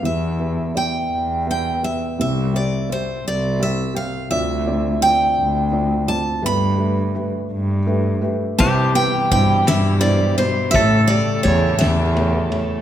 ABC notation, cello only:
X:1
M:6/8
L:1/8
Q:3/8=56
K:C
V:1 name="Cello" clef=bass
E,,3 E,,3 | C,,3 C,,3 | D,,3 D,,3 | G,,3 G,,3 |
C,2 G,, G,,3 | A,,2 E,, E,,3 |]